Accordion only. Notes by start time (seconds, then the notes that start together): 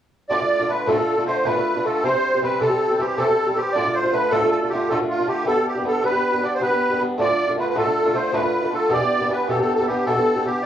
0.29 D5
0.69 B4
0.88 A4
1.27 C5
1.45 B4
1.85 A4
2.04 C5
2.44 B4
2.61 A4
3.00 G4
3.17 A4
3.56 G4
3.73 D5
3.94 C5
4.13 B4
4.30 A4
4.51 A4
4.69 G4
4.89 A4
5.10 F4
5.28 G4
5.47 A4
5.67 G4
5.87 A4
6.05 B4
6.43 D5
6.54 C5
6.62 B4
7.20 D5
7.59 B4
7.70 B4
7.78 A4
8.15 C5
8.34 B4
8.74 A4
8.93 D5
9.32 B4
9.49 A4
9.61 A4
9.75 A4
9.87 G4
10.06 A4
10.46 G4
10.63 D5